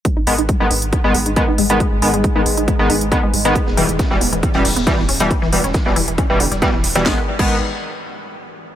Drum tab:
CC |----------------|----------------|----------------|----------------|
HH |x-oxx-oxx-oxx-ox|x-oxx-oxx-oxx-ox|x-oxx-oxxxoxx-ox|x-oxx-oxx-oxx-ox|
SH |----------------|----------------|x-x-x-x-x---x-x-|x-x-x-x-x-x-x-x-|
SD |----------------|----------------|-o--oo------oo--|-o-ooo-----oo-o-|
BD |o---o---o---o---|o---o---o---o---|o---o---o---o---|o---o---o---o---|

CC |---x------------|
HH |----------------|
SH |----------------|
SD |o---------------|
BD |o--o------------|